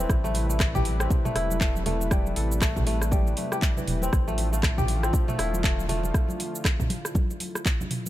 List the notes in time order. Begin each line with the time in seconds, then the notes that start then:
Already playing: C3 E3 G3 A3 E4 G4 B4
0.00 C4
0.10 A1, kick, cross-stick, shaker
0.24 A3, high conga, shaker
0.34 open hi-hat, muted conga
0.50 A3, shaker
0.60 kick, cross-stick, clap, shaker
0.75 G4, kick, mid tom, low conga, shaker
0.85 open hi-hat, muted conga
1.00 C4, cross-stick, shaker
1.10 kick, low conga, shaker
1.25 A3, mid tom, muted conga, shaker
1.35 E1 E4, cross-stick, open hi-hat
1.50 high conga, shaker
1.61 A3, kick, clap, muted conga, shaker
1.76 high conga, shaker
1.86 A3, open hi-hat, low conga
2.01 muted conga, shaker
2.11 G3, kick, cross-stick, shaker
2.26 high conga, shaker
2.36 A1 A4, open hi-hat, muted conga
2.52 shaker
2.61 A3, kick, cross-stick, clap, shaker
2.76 kick, mid tom, low conga, shaker
2.87 A3, open hi-hat, muted conga, high conga
3.02 cross-stick, shaker
3.11 G3, kick, high conga, shaker
3.27 muted conga, shaker
3.37 A3, open hi-hat, high conga
3.52 G4, cross-stick, shaker
3.62 kick, clap, muted conga, shaker
3.77 E3, high conga, low conga, shaker
3.88 E1, mid tom, open hi-hat, high conga
4.02 C4, muted conga, shaker
4.13 A1 D3 F3 A3 F4, kick, cross-stick, shaker
4.28 A3, high conga, shaker
4.38 open hi-hat, muted conga
4.53 A3, shaker
4.63 kick, cross-stick, clap, shaker
4.78 G4, kick, mid tom, low conga, shaker
4.87 open hi-hat, muted conga
5.03 C4, cross-stick, shaker
5.13 kick, low conga, shaker
5.28 A3, mid tom, muted conga, shaker
5.38 E1 E4, cross-stick, open hi-hat
5.53 high conga, shaker
5.64 A3, kick, clap, muted conga, shaker
5.79 high conga, shaker
5.89 A3, open hi-hat, low conga
6.04 muted conga, shaker
6.14 kick, cross-stick, shaker
6.29 high conga, shaker
6.40 open hi-hat, muted conga
6.55 shaker
6.65 kick, cross-stick, clap, shaker
6.80 kick, mid tom, low conga, shaker
6.90 open hi-hat, muted conga, high conga
7.05 cross-stick, shaker
7.15 kick, high conga, shaker
7.31 muted conga, shaker
7.40 open hi-hat, high conga
7.55 cross-stick, shaker
7.66 kick, clap, muted conga, shaker
7.81 high conga, low conga, shaker
7.91 mid tom, open hi-hat, high conga
8.06 muted conga, shaker